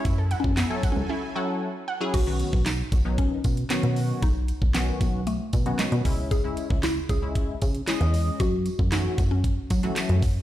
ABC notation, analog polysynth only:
X:1
M:4/4
L:1/16
Q:1/4=115
K:Bmix
V:1 name="Analog polysynth"
z4 z [F,CEA]2 z3 [F,CEA]2 z3 [F,CEG] | z [D,F,B,CF]2 z3 [CF] [D,F,B,CD]2 z3 [D,F,B,CF]4 | z4 [D,F,B,CF]3 z4 [D,F,B,CF]3 [G,CE]2 | z [G,CE]2 z3 [CE] [G,CE]2 z3 [G,Cd]4 |
z4 [E,F,A,CF]3 z4 [E,F,A,CF]3 z2 |]